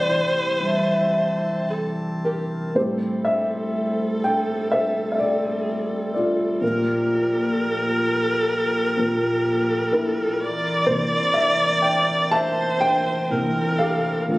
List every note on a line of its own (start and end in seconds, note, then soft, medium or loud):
0.00 2.72 C2 medium
0.00 1.11 G2 soft
0.00 1.66 C3 medium
0.00 2.71 E3 medium
0.00 2.71 C4 medium
0.00 0.59 G4 medium
0.00 1.65 C5 loud
0.00 0.34 D5 medium
0.09 2.20 E3 soft
0.60 2.71 G3 soft
0.60 1.68 E5 medium
0.60 2.74 A5 medium
1.70 1.90 A4 medium
2.25 2.45 G4 soft
2.25 2.77 A#4 medium
2.75 4.20 A2 soft
2.75 6.58 G3 soft
2.75 4.20 G3 soft
2.75 6.59 C4 soft
2.75 4.20 C4 soft
2.75 4.69 G4 medium
2.75 6.58 A4 medium
2.75 6.59 A4 medium
2.75 3.22 C5 medium
3.25 4.20 E5 medium
4.24 4.74 G5 medium
4.72 6.59 C5 medium
4.72 4.81 E5 medium
5.12 5.19 E5 medium
5.19 6.12 D5 medium
6.14 8.94 F4 soft
6.14 8.92 D5 medium
6.61 7.99 A#2 medium
6.61 10.37 A#2 medium
6.61 8.00 F3 soft
6.61 10.36 F3 medium
6.61 8.00 A#3 medium
6.61 10.36 A#3 medium
6.61 10.36 G4 medium
6.61 10.41 A#4 medium
8.97 9.40 A#2 soft
8.97 9.40 F3 soft
8.97 9.40 A#3 soft
9.92 11.81 E4 medium
9.92 10.91 A#4 medium
10.40 14.26 E3 medium
10.40 14.26 C4 medium
10.40 14.26 A#4 medium
10.40 12.34 D5 loud
10.87 13.29 C3 soft
10.87 13.30 E3 soft
10.87 13.29 A#3 medium
10.87 10.97 C5 medium
11.34 11.79 E5 medium
11.82 12.33 G5 medium
12.31 13.33 C5 loud
12.31 14.25 E5 medium
12.31 12.43 A5 loud
12.81 13.82 G5 loud
13.30 13.75 C3 soft
13.30 13.76 E3 soft
13.30 13.75 A#3 medium
13.30 14.29 A#4 loud
13.79 14.38 G4 medium
13.79 14.38 F5 medium
14.28 14.38 D3 medium
14.28 14.38 F3 soft
14.28 14.38 F3 medium
14.28 14.38 A3 medium
14.28 14.38 D4 medium
14.28 14.38 A4 medium
14.28 14.38 A4 loud